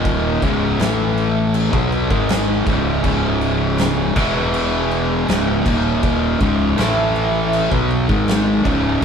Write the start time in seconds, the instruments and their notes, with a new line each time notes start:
Already playing: fingered electric bass D#1, distorted electric guitar D#2 A#2 D#3
0.05 kick, crash
0.42 fingered electric bass C#1, distorted electric guitar C#2 G#2 C#3, kick, crash
0.80 fingered electric bass A1, distorted electric guitar A2 E3 A3, snare, crash
1.18 crash
1.54 crash
1.72 fingered electric bass B1, distorted electric guitar B2 F#3 B3, kick
1.92 crash
2.10 fingered electric bass G#1, distorted electric guitar G#2 D#3 G#3, kick
2.29 snare, crash
2.66 fingered electric bass C#1, distorted electric guitar C#2 G#2 C#3, kick, crash
3.03 fingered electric bass C#1, distorted electric guitar C#2 G#2 C#3, kick, crash
3.41 crash
3.78 snare, crash
4.16 fingered electric bass E1, distorted electric guitar E2 B2 E3, kick, crash
4.54 crash
4.91 crash
5.28 fingered electric bass C#1, distorted electric guitar C#2 G#2 C#3, snare, crash
5.65 fingered electric bass D#1, distorted electric guitar D#2 A#2 D#3, kick, crash
6.03 kick, crash
6.40 fingered electric bass C#1, distorted electric guitar C#2 G#2 C#3, kick, crash
6.77 fingered electric bass A1, distorted electric guitar A2 E3 A3, snare, crash
7.16 crash
7.53 crash
7.71 fingered electric bass B1, distorted electric guitar B2 F#3 B3, kick
7.91 crash
8.08 fingered electric bass G#1, distorted electric guitar G#2 D#3 G#3, kick
8.28 snare, crash
8.64 fingered electric bass C#1, distorted electric guitar C#2 G#2 C#3, kick, crash